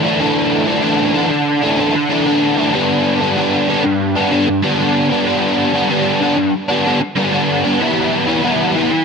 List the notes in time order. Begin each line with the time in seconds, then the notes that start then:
0.03 E3 A3 D4
0.19 D3 E3 A3 D4
0.67 E3 A3 D4
0.82 D3 E3 A3 D4
1.14 D3 E3 A3 D4
1.31 muted overdriven electric guitar stroke
1.62 E3 A3 D4
1.77 D3 E3 A3 D4
1.95 muted overdriven electric guitar stroke
2.09 D3 E3 A3 D4
2.25 E3 A3 D4
2.57 E3 A3 D4
2.74 G2 D3 G3 B3 D4
3.21 G3 B3 D4
3.36 G2 D3 G3 B3 D4
3.68 D3 G3 B3 D4
3.84 muted overdriven electric guitar stroke
4.16 G3 B3 D4
4.31 D3 G3 B3 D4
4.48 muted overdriven electric guitar stroke
4.62 G2 D3 G3 B3 D4
4.78 G3 B3 D4
5.10 G3 B3 D4
5.26 G2 D3 G3 B3 D4
5.73 G3 B3 D4
5.89 G2 D3 G3 B3 D4
6.21 D3 G3 B3 D4
6.37 muted overdriven electric guitar stroke
6.68 G3 B3 D4
6.85 D3 G3 B3 D4
7.01 muted overdriven electric guitar stroke
7.16 G2 D3 G3 B3 D4
7.32 G3 B3 D4
7.64 G3 B3 D4
7.80 E3 G3 B3 E4
8.27 G3 B3 E4
8.43 E3 G3 B3 E4
8.75 E3 G3 B3 E4
8.92 muted overdriven electric guitar stroke